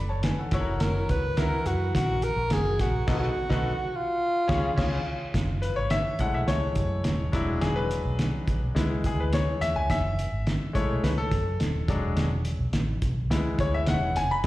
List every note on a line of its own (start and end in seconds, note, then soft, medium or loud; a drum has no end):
0.00 0.31 F#1 medium
0.09 0.23 C#5 medium
0.09 0.23 A5 medium
0.23 0.38 B4 medium
0.23 0.38 G#5 medium
0.23 snare loud
0.23 closed hi-hat medium
0.38 0.52 A4 soft
0.38 0.65 F#5 medium
0.51 0.64 F#1 medium
0.51 1.21 E4 loud
0.51 1.21 F#4 medium
0.51 0.60 A4 medium
0.51 1.21 C#5 loud
0.51 kick loud
0.51 snare soft
0.51 closed hi-hat medium
0.60 1.24 A#4 medium
0.67 0.79 F1 medium
0.80 1.04 F#1 loud
0.80 1.11 A#4 loud
0.80 snare loud
0.80 closed hi-hat medium
1.09 1.33 C#2 medium
1.09 1.40 B4 loud
1.09 kick medium
1.09 closed hi-hat medium
1.37 1.61 C#2 medium
1.37 2.10 E4 medium
1.37 2.10 F#4 medium
1.37 2.10 A#4 medium
1.37 1.68 A#4 loud
1.37 2.10 E5 medium
1.37 snare loud
1.37 closed hi-hat medium
1.66 1.90 F#2 loud
1.66 1.95 F#4 loud
1.66 closed hi-hat medium
1.94 2.30 A#1 medium
1.94 2.25 F#4 medium
1.94 kick loud
1.94 snare loud
1.94 closed hi-hat loud
2.22 2.54 A#4 loud
2.22 closed hi-hat medium
2.36 2.48 A#1 medium
2.50 2.75 F#1 loud
2.50 2.82 G#4 loud
2.50 snare loud
2.50 closed hi-hat medium
2.79 3.03 A#1 medium
2.79 3.08 F#4 medium
2.79 kick medium
2.79 snare soft
2.79 closed hi-hat medium
3.07 3.27 B1 medium
3.07 3.27 B2 loud
3.07 3.27 D#4 loud
3.07 3.27 F#4 medium
3.07 3.97 F#4 medium
3.07 3.27 A4 loud
3.07 3.27 B4 loud
3.07 kick loud
3.07 snare loud
3.07 crash medium
3.49 3.69 B1 loud
3.49 3.69 D#4 loud
3.49 3.69 F#4 loud
3.49 3.70 A4 loud
3.49 3.70 B4 loud
3.49 kick loud
3.49 snare loud
3.96 5.08 F4 medium
4.48 4.69 C#2 loud
4.48 4.68 C#3 loud
4.48 4.68 C#4 medium
4.48 4.68 G#4 loud
4.48 4.69 C#5 loud
4.48 kick loud
4.48 snare loud
4.55 4.72 F4 medium
4.76 4.97 C#2 loud
4.76 4.97 C#3 loud
4.76 4.96 C#4 medium
4.76 4.97 G#4 medium
4.76 4.97 C#5 medium
4.76 kick loud
4.76 snare loud
4.76 crash medium
4.83 5.00 F4 medium
5.34 5.70 F#1 medium
5.34 kick loud
5.34 snare loud
5.34 closed hi-hat medium
5.62 5.77 B4 medium
5.62 closed hi-hat medium
5.76 6.01 G#1 medium
5.76 5.91 C#5 medium
5.90 6.20 E5 loud
5.90 snare loud
5.90 closed hi-hat medium
6.19 6.31 A1 medium
6.19 7.29 G#3 soft
6.19 7.30 A3 medium
6.19 7.30 E4 medium
6.19 6.35 F#5 medium
6.19 kick medium
6.19 closed hi-hat medium
6.34 6.46 B1 medium
6.34 6.39 E5 medium
6.48 6.72 C#2 medium
6.48 7.36 C#5 medium
6.48 snare loud
6.48 closed hi-hat medium
6.75 7.00 F#2 loud
6.75 kick medium
6.75 closed hi-hat medium
7.04 7.29 D#1 medium
7.04 snare loud
7.04 closed hi-hat medium
7.32 7.57 E1 medium
7.32 8.71 F#3 medium
7.32 8.71 G#3 medium
7.32 8.72 D4 medium
7.32 7.63 E4 medium
7.32 kick loud
7.32 snare soft
7.32 closed hi-hat medium
7.61 7.97 E1 medium
7.61 7.76 G#4 medium
7.61 snare loud
7.61 closed hi-hat medium
7.76 8.57 B4 loud
7.91 closed hi-hat medium
8.05 8.29 B1 medium
8.19 snare medium
8.19 closed hi-hat medium
8.47 8.59 A1 loud
8.47 kick medium
8.47 closed hi-hat medium
8.62 8.73 B1 medium
8.75 9.00 C#2 medium
8.75 9.85 G#3 medium
8.75 9.85 B3 medium
8.75 9.85 E4 medium
8.75 snare loud
8.75 closed hi-hat loud
9.04 9.40 D2 medium
9.04 9.20 G#4 medium
9.04 kick medium
9.04 closed hi-hat medium
9.20 9.34 B4 medium
9.33 9.62 C#5 medium
9.33 snare loud
9.33 closed hi-hat medium
9.61 9.73 E2 medium
9.61 9.74 E5 loud
9.61 snare soft
9.61 closed hi-hat medium
9.75 9.87 C#2 medium
9.75 9.90 G#5 loud
9.90 10.25 F#1 loud
9.90 10.77 E5 loud
9.90 kick loud
9.90 snare loud
9.90 closed hi-hat medium
10.19 closed hi-hat medium
10.32 10.56 G#1 medium
10.47 snare loud
10.47 closed hi-hat medium
10.73 10.87 A1 loud
10.73 11.12 G#3 medium
10.73 11.12 A3 medium
10.73 11.12 E4 medium
10.73 11.04 C#5 medium
10.73 kick medium
10.73 closed hi-hat medium
10.89 11.01 B1 medium
11.03 11.27 C#2 medium
11.03 11.09 B4 medium
11.03 snare loud
11.03 closed hi-hat medium
11.18 11.99 A4 medium
11.31 11.55 F#2 medium
11.31 kick loud
11.31 closed hi-hat medium
11.60 11.84 D#1 medium
11.60 snare medium
11.60 closed hi-hat medium
11.88 12.12 E1 medium
11.88 12.26 F#3 medium
11.88 12.26 G#3 medium
11.88 12.26 D4 medium
11.88 kick loud
11.88 closed hi-hat medium
12.16 12.52 E1 medium
12.16 snare loud
12.16 closed hi-hat medium
12.45 closed hi-hat medium
12.59 12.71 B1 medium
12.73 12.97 A1 medium
12.73 snare medium
12.73 closed hi-hat medium
13.02 13.30 B1 medium
13.02 kick medium
13.02 closed hi-hat medium
13.30 13.54 C#2 loud
13.30 14.11 G#3 medium
13.30 14.11 B3 soft
13.30 14.12 E4 medium
13.30 snare loud
13.30 closed hi-hat medium
13.59 13.82 D2 medium
13.59 13.74 C#5 medium
13.59 kick medium
13.59 closed hi-hat medium
13.74 13.88 E5 medium
13.87 14.11 E1 medium
13.87 14.17 F#5 loud
13.87 snare loud
13.87 closed hi-hat medium
14.15 14.39 F1 medium
14.15 14.29 G#5 loud
14.15 snare soft
14.15 closed hi-hat medium
14.31 14.45 B5 loud
14.44 14.47 F#1 loud